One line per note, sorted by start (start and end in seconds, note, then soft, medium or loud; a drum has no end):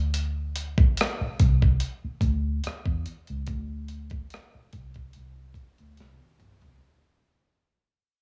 0.00 0.85 D2 medium
0.14 closed hi-hat medium
0.56 closed hi-hat soft
0.78 kick medium
0.97 cross-stick medium
0.97 closed hi-hat medium
1.21 muted fingered electric bass stroke soft
1.40 1.77 C2 medium
1.40 kick medium
1.40 closed hi-hat soft
1.62 kick medium
1.80 closed hi-hat medium
2.05 muted fingered electric bass stroke soft
2.21 2.59 D2 medium
2.21 kick medium
2.21 closed hi-hat soft
2.64 muted fingered electric bass stroke soft
2.64 cross-stick medium
2.64 closed hi-hat medium
2.86 3.04 E2 medium
2.86 kick medium
3.06 closed hi-hat medium
3.27 3.47 C#2 medium
3.27 closed hi-hat soft
3.47 4.23 D2 medium
3.47 kick medium
3.47 closed hi-hat medium
3.88 closed hi-hat soft
4.10 kick medium
4.10 closed hi-hat soft
4.30 cross-stick medium
4.30 closed hi-hat medium
4.55 muted fingered electric bass stroke soft
4.73 5.11 C2 medium
4.73 kick medium
4.73 closed hi-hat soft
4.94 kick medium
4.94 closed hi-hat soft
5.13 5.53 C2 medium
5.13 closed hi-hat medium
5.54 muted fingered electric bass stroke soft
5.54 kick medium
5.54 closed hi-hat soft
5.78 5.97 D2 medium
5.78 closed hi-hat soft
5.97 6.18 C2 medium
5.97 snare soft
5.97 closed hi-hat medium
6.20 high tom soft
6.40 6.60 B1 medium
6.40 closed hi-hat medium
6.40 mid tom medium
6.61 6.80 C2 medium
6.61 closed hi-hat soft
6.61 floor tom medium